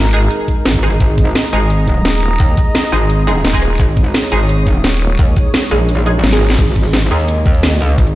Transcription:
0.00 0.29 G#1 loud
0.00 6.55 G#3 medium
0.00 6.55 D#4 medium
0.00 6.59 D#4 medium
0.00 6.59 G#4 medium
0.00 0.99 A#4 medium
0.04 cross-stick soft
0.13 0.18 G#3 medium
0.13 0.18 D#4 medium
0.13 0.18 G#4 loud
0.13 closed hi-hat medium
0.31 closed hi-hat medium
0.48 kick medium
0.48 closed hi-hat medium
0.66 0.99 G#1 loud
0.66 snare loud
0.66 closed hi-hat medium
0.74 kick medium
0.79 0.88 G#3 medium
0.79 0.88 D#4 medium
0.79 0.88 G#4 medium
0.79 3.60 A#5 medium
0.79 cross-stick medium
0.79 closed hi-hat medium
1.00 1.34 G#1 loud
1.00 3.78 D#5 medium
1.00 kick loud
1.00 closed hi-hat medium
1.18 kick loud
1.18 closed hi-hat medium
1.35 snare loud
1.35 closed hi-hat medium
1.44 cross-stick soft
1.53 2.04 G#1 loud
1.53 1.60 G#3 medium
1.53 1.60 D#4 medium
1.53 1.60 G#4 medium
1.53 closed hi-hat medium
1.70 closed hi-hat medium
1.88 kick medium
1.88 closed hi-hat medium
2.05 2.39 D#1 loud
2.05 snare loud
2.05 closed hi-hat medium
2.22 closed hi-hat medium
2.40 2.56 D#2 loud
2.40 kick loud
2.40 closed hi-hat medium
2.57 kick loud
2.57 closed hi-hat medium
2.75 snare loud
2.75 closed hi-hat medium
2.84 cross-stick soft
2.92 3.43 G#1 loud
2.92 2.97 G#3 medium
2.92 2.97 D#4 medium
2.92 2.97 G#4 loud
2.92 closed hi-hat medium
3.10 closed hi-hat medium
3.27 3.32 G#3 loud
3.27 3.32 D#4 medium
3.27 3.32 G#4 loud
3.27 closed hi-hat medium
3.45 3.78 D#1 loud
3.45 snare loud
3.45 closed hi-hat medium
3.53 4.30 G#3 loud
3.53 4.30 D#4 medium
3.53 4.30 G#4 loud
3.53 kick medium
3.58 6.39 D#6 medium
3.58 cross-stick medium
3.58 closed hi-hat medium
3.79 4.13 G#1 medium
3.79 6.57 C#5 medium
3.79 kick loud
3.79 closed hi-hat medium
3.97 kick loud
3.97 closed hi-hat medium
4.14 snare loud
4.14 closed hi-hat loud
4.23 cross-stick soft
4.32 4.83 G#1 loud
4.32 4.40 G#3 medium
4.32 4.39 D#4 medium
4.32 4.40 G#4 loud
4.32 closed hi-hat medium
4.49 closed hi-hat loud
4.67 kick medium
4.67 closed hi-hat medium
4.84 5.18 D#1 loud
4.84 snare loud
4.84 closed hi-hat loud
5.02 closed hi-hat medium
5.19 5.35 D#2 loud
5.19 kick loud
5.19 closed hi-hat loud
5.36 kick loud
5.36 closed hi-hat medium
5.54 snare loud
5.54 closed hi-hat loud
5.63 cross-stick soft
5.71 6.22 A#1 loud
5.71 5.76 G#3 medium
5.71 5.76 D#4 medium
5.71 5.76 G#4 loud
5.71 closed hi-hat medium
5.89 closed hi-hat loud
6.06 6.11 G#3 medium
6.06 6.11 D#4 medium
6.06 6.11 G#4 loud
6.06 closed hi-hat medium
6.24 6.57 G#1 loud
6.24 snare loud
6.24 closed hi-hat loud
6.24 high tom medium
6.32 6.57 G#3 loud
6.32 6.57 D#4 medium
6.32 6.57 G#4 loud
6.32 snare medium
6.41 cross-stick medium
6.41 closed hi-hat medium
6.50 snare medium
6.58 7.09 G#1 loud
6.58 8.15 G#3 medium
6.58 8.15 D#4 medium
6.58 8.15 D#5 medium
6.58 kick loud
6.58 closed hi-hat medium
6.58 crash loud
6.67 closed hi-hat soft
6.76 kick medium
6.76 closed hi-hat medium
6.93 snare loud
6.93 closed hi-hat loud
7.02 cross-stick soft
7.11 7.72 D#2 loud
7.11 7.19 G#3 medium
7.11 7.19 D#4 medium
7.11 7.19 G#4 medium
7.11 closed hi-hat medium
7.20 closed hi-hat soft
7.28 closed hi-hat loud
7.46 kick loud
7.46 closed hi-hat medium
7.54 closed hi-hat soft
7.63 snare loud
7.63 closed hi-hat loud
7.72 7.97 D2 loud
7.72 closed hi-hat soft
7.81 closed hi-hat medium
7.98 8.15 G#1 medium
7.98 kick loud
7.98 closed hi-hat medium
8.07 closed hi-hat soft

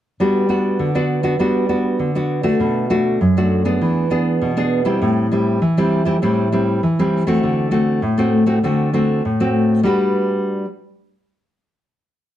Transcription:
0.20 0.77 G3 medium
0.20 0.45 B3 medium
0.20 0.45 D4 medium
0.20 0.46 F#4 medium
0.49 0.90 B3 medium
0.49 0.90 D4 medium
0.49 0.90 F#4 medium
0.79 1.37 D3 medium
0.95 1.20 B3 medium
0.95 1.20 D4 medium
0.95 1.20 F#4 medium
1.23 1.34 B3 medium
1.23 1.34 D4 medium
1.23 1.35 F#4 medium
1.39 1.97 G3 medium
1.39 1.65 B3 medium
1.39 1.65 D4 medium
1.39 1.65 F#4 medium
1.69 2.10 B3 medium
1.69 2.10 D4 soft
1.69 2.10 F#4 medium
1.99 2.57 D3 medium
2.15 2.40 B3 medium
2.15 2.41 D4 medium
2.15 2.41 F#4 medium
2.43 2.84 A3 medium
2.43 2.85 D4 medium
2.43 2.85 F#4 medium
2.60 3.17 B2 medium
2.90 3.18 A3 medium
2.90 3.19 D4 medium
2.90 3.18 F#4 medium
3.21 3.78 F#2 medium
3.37 3.61 A3 medium
3.37 3.61 D4 medium
3.37 3.62 F#4 medium
3.65 4.05 B3 medium
3.65 4.06 D4 medium
3.65 4.06 G#4 medium
3.81 4.38 E3 medium
4.10 4.51 B3 medium
4.10 4.51 D4 medium
4.10 4.51 G#4 medium
4.42 4.98 B2 medium
4.57 4.81 B3 medium
4.57 4.82 D4 medium
4.57 4.82 G#4 medium
4.85 5.26 G3 medium
4.85 5.26 C4 medium
4.85 5.26 E4 medium
5.02 5.58 A2 medium
5.32 5.59 G3 soft
5.32 5.60 C4 soft
5.32 5.60 E4 medium
5.62 6.18 E3 medium
5.78 6.02 G3 medium
5.78 6.02 C4 medium
5.78 6.02 E4 medium
6.05 6.16 G3 medium
6.05 6.16 C4 medium
6.05 6.16 E4 medium
6.22 6.79 A2 medium
6.22 6.47 G3 medium
6.22 6.47 C4 medium
6.22 6.47 E4 medium
6.52 6.80 G3 soft
6.52 6.80 C4 soft
6.52 6.81 E4 medium
6.83 7.39 E3 medium
6.99 7.23 G3 medium
6.99 7.23 C4 medium
6.99 7.23 E4 medium
7.27 7.67 A3 medium
7.27 7.67 C4 medium
7.27 7.67 F#4 medium
7.43 8.00 D3 medium
7.71 8.00 A3 soft
7.71 8.00 C4 medium
7.71 8.00 F#4 medium
8.02 8.59 A2 medium
8.18 8.43 A3 medium
8.18 8.43 C4 medium
8.18 8.43 F#4 medium
8.46 8.57 A3 medium
8.46 8.57 C4 medium
8.46 8.57 F#4 medium
8.63 9.20 D3 medium
8.63 8.88 A3 medium
8.63 8.89 C4 medium
8.63 8.89 F#4 medium
8.93 9.21 A3 soft
8.93 9.21 C4 medium
8.93 9.22 F#4 medium
9.25 9.81 A2 medium
9.40 9.79 A3 medium
9.40 9.80 C4 medium
9.40 9.80 F#4 medium
9.83 10.65 G3 medium
9.83 10.65 D4 medium
9.83 10.65 F#4 medium
9.83 10.65 B4 medium

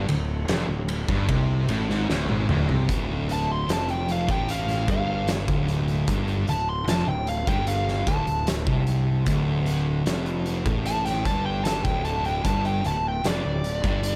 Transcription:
0.09 0.46 D1 medium
0.09 0.40 D2 medium
0.09 ride medium
0.48 0.67 F1 loud
0.48 0.68 F2 loud
0.48 snare loud
0.48 ride medium
0.68 1.06 D1 medium
0.68 1.01 D2 medium
0.88 ride medium
1.08 1.27 G1 loud
1.08 1.28 G2 loud
1.08 kick loud
1.29 1.66 C2 loud
1.29 1.68 C3 loud
1.29 kick loud
1.29 ride loud
1.69 1.87 A1 loud
1.69 1.88 A2 loud
1.69 ride medium
1.89 2.07 G#1 loud
1.89 2.08 G#2 loud
1.89 snare soft
2.09 2.28 D1 medium
2.09 2.28 D2 loud
2.09 snare medium
2.29 2.48 G#1 medium
2.29 2.48 G#2 loud
2.29 high tom medium
2.49 2.68 D1 loud
2.49 2.68 D2 loud
2.49 mid tom loud
2.69 2.88 C2 loud
2.69 2.88 C3 loud
2.69 floor tom medium
2.89 3.65 D1 medium
2.89 3.68 D2 loud
2.89 kick loud
2.89 closed hi-hat medium
3.29 3.50 A5 loud
3.29 closed hi-hat medium
3.52 3.70 C6 medium
3.68 4.24 F1 loud
3.68 4.27 F2 loud
3.68 snare loud
3.68 closed hi-hat loud
3.73 3.90 A5 medium
3.89 4.09 G5 medium
3.89 closed hi-hat soft
4.09 4.30 F5 medium
4.09 closed hi-hat medium
4.29 4.85 A1 loud
4.29 4.88 A2 loud
4.29 4.49 G5 medium
4.29 kick loud
4.29 closed hi-hat soft
4.49 4.88 F5 medium
4.49 closed hi-hat loud
4.68 snare soft
4.68 closed hi-hat soft
4.88 5.44 G1 loud
4.88 5.47 G2 loud
4.88 5.28 F5 loud
4.88 kick loud
4.88 closed hi-hat medium
5.28 snare loud
5.28 closed hi-hat loud
5.48 6.04 D1 medium
5.48 6.07 D2 loud
5.48 kick loud
5.48 closed hi-hat soft
5.68 closed hi-hat medium
5.88 closed hi-hat soft
6.08 6.45 G1 medium
6.08 6.47 G2 loud
6.08 kick loud
6.08 closed hi-hat medium
6.28 closed hi-hat soft
6.47 6.85 D1 medium
6.47 6.80 D2 medium
6.47 6.68 A5 loud
6.47 closed hi-hat medium
6.69 6.88 C6 medium
6.87 7.06 F1 loud
6.87 7.07 F2 loud
6.87 7.07 A5 medium
6.87 snare loud
6.87 closed hi-hat loud
7.07 7.44 D1 medium
7.07 7.40 D2 medium
7.07 7.27 G5 medium
7.27 7.48 F5 medium
7.27 closed hi-hat medium
7.47 8.03 G1 loud
7.47 8.06 G2 loud
7.47 7.67 G5 medium
7.47 kick loud
7.47 closed hi-hat soft
7.67 8.06 F5 medium
7.67 closed hi-hat loud
7.88 snare soft
8.07 8.26 D1 loud
8.07 8.26 D2 loud
8.07 8.46 A5 loud
8.07 kick loud
8.07 closed hi-hat medium
8.27 8.64 D1 medium
8.27 8.59 D2 medium
8.27 closed hi-hat soft
8.47 snare loud
8.47 closed hi-hat loud
8.67 9.23 C2 medium
8.67 9.26 C3 loud
8.67 kick loud
8.87 closed hi-hat medium
9.26 10.02 D1 loud
9.26 10.05 D2 loud
9.26 kick loud
9.26 closed hi-hat loud
9.66 closed hi-hat medium
10.06 10.62 F1 medium
10.06 10.65 F2 loud
10.06 snare loud
10.06 closed hi-hat loud
10.26 closed hi-hat soft
10.46 closed hi-hat medium
10.65 11.22 A1 loud
10.65 11.25 A2 loud
10.65 kick loud
10.65 closed hi-hat soft
10.86 11.05 A5 loud
10.86 closed hi-hat loud
11.06 11.25 G5 medium
11.06 snare soft
11.06 closed hi-hat soft
11.25 11.81 G1 loud
11.25 11.84 G2 loud
11.25 11.45 A5 medium
11.25 kick loud
11.25 closed hi-hat medium
11.45 11.64 G5 medium
11.64 11.84 A5 loud
11.64 snare loud
11.64 closed hi-hat loud
11.85 12.41 D1 medium
11.85 12.44 D2 loud
11.85 12.04 G5 medium
11.85 kick loud
11.85 closed hi-hat soft
12.05 12.24 A5 medium
12.05 closed hi-hat medium
12.25 12.44 G5 medium
12.25 closed hi-hat soft
12.45 12.82 G1 medium
12.45 12.84 G2 loud
12.45 12.64 A5 loud
12.45 kick loud
12.45 closed hi-hat medium
12.65 12.85 G5 medium
12.65 closed hi-hat soft
12.84 13.22 D1 medium
12.84 13.17 D2 medium
12.84 13.05 A5 medium
12.84 closed hi-hat medium
13.08 13.26 G5 medium
13.24 13.43 F1 medium
13.24 13.44 F2 loud
13.24 14.16 D5 loud
13.24 snare loud
13.24 closed hi-hat loud
13.45 13.82 D1 medium
13.45 13.77 D2 medium
13.64 closed hi-hat medium
13.84 14.16 G1 loud
13.84 14.16 G2 loud
13.84 kick loud
13.84 closed hi-hat soft
14.03 closed hi-hat loud

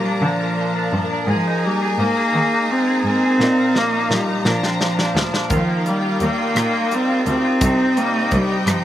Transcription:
0.00 0.21 A#2 medium
0.00 0.57 F3 soft
0.00 0.25 G3 medium
0.00 0.40 A#3 soft
0.00 1.25 D4 medium
0.00 3.35 A#4 soft
0.00 1.23 F5 soft
0.00 1.23 A#5 medium
0.06 0.22 D4 soft
0.21 1.35 A#2 medium
0.21 0.29 D3 medium
0.21 1.02 F3 medium
0.21 0.75 D4 medium
0.40 1.47 A#3 soft
0.58 0.93 F3 soft
0.76 1.09 D4 medium
0.92 1.00 G2 medium
0.92 1.36 F3 soft
1.11 1.28 D4 medium
1.27 1.35 G#2 medium
1.27 1.66 F3 medium
1.27 4.42 D#4 medium
1.27 1.81 G#4 medium
1.27 3.36 G#5 medium
1.27 3.37 A#5 medium
1.47 2.52 D#4 soft
1.65 1.99 G3 medium
1.65 1.99 A#3 soft
1.82 2.16 G#4 soft
1.98 2.06 G#2 medium
1.98 2.70 A#3 soft
1.98 2.73 A#3 medium
2.17 2.34 G#4 soft
2.33 2.41 D#3 medium
2.33 3.47 G#3 medium
2.33 2.86 G#4 soft
2.53 3.40 D#4 soft
2.70 3.06 A#3 soft
2.70 3.05 C4 medium
2.87 3.22 G#4 soft
3.04 3.12 G#2 medium
3.04 3.57 A#3 soft
3.04 3.79 C4 medium
3.23 3.40 G#4 soft
3.39 3.47 A#2 medium
3.39 4.44 A#2 medium
3.39 3.92 D#4 medium
3.39 4.44 A#4 soft
3.39 4.44 F5 medium
3.39 5.48 A#5 medium
3.39 snare soft
3.57 4.63 A#3 soft
3.75 4.11 F3 soft
3.75 4.13 A#3 medium
3.75 snare soft
3.93 4.27 D#4 soft
4.09 4.17 A#2 medium
4.09 4.81 F3 soft
4.09 4.49 G3 medium
4.09 snare medium
4.29 4.45 D#4 soft
4.45 4.53 A#2 medium
4.45 5.58 A#2 medium
4.45 5.25 F3 medium
4.45 5.50 D4 medium
4.45 4.96 D4 soft
4.45 5.50 C5 soft
4.45 7.59 F5 soft
4.45 snare medium
4.63 5.58 C4 soft
4.63 snare medium
4.81 5.15 F3 soft
4.81 snare medium
4.98 5.32 D4 soft
4.98 snare medium
5.15 5.23 D2 medium
5.15 5.86 F3 soft
5.15 snare medium
5.33 5.50 D4 soft
5.33 snare medium
5.50 5.58 D#2 medium
5.50 6.60 D#3 medium
5.50 5.89 F3 medium
5.50 8.84 D#4 medium
5.50 6.01 F4 medium
5.50 7.60 A#4 medium
5.50 7.59 G5 medium
5.50 kick medium
5.50 closed hi-hat medium
5.68 6.72 A#3 soft
5.86 6.21 G3 soft
5.86 6.25 G3 medium
5.86 closed hi-hat soft
6.02 6.37 F4 soft
6.20 6.29 D#2 medium
6.20 6.92 G3 soft
6.20 6.96 A#3 medium
6.20 closed hi-hat soft
6.38 6.56 F4 soft
6.55 6.63 A#2 medium
6.55 7.09 F4 soft
6.55 cross-stick medium
6.55 closed hi-hat medium
6.74 7.69 A#3 soft
6.91 7.27 G3 soft
6.91 7.27 C4 medium
6.91 closed hi-hat soft
7.10 7.44 F4 medium
7.26 7.34 D2 medium
7.26 7.97 G3 soft
7.26 7.99 C4 medium
7.26 closed hi-hat soft
7.45 7.62 F4 medium
7.60 7.70 C2 medium
7.60 8.65 C3 medium
7.60 8.14 D#4 medium
7.60 8.84 G4 soft
7.60 8.84 C5 medium
7.60 8.84 G5 medium
7.60 kick medium
7.60 closed hi-hat medium
7.80 8.84 C4 soft
7.97 8.30 G3 soft
7.97 8.36 A#3 medium
7.97 closed hi-hat soft
8.14 8.49 D#4 soft
8.31 8.40 C2 medium
8.31 8.84 G3 soft
8.31 8.70 G3 medium
8.31 kick medium
8.31 closed hi-hat soft
8.49 8.67 D#4 soft
8.66 8.74 G2 medium
8.66 8.84 C3 medium
8.66 8.84 F3 medium
8.66 8.84 D#4 medium
8.66 cross-stick medium
8.66 closed hi-hat medium

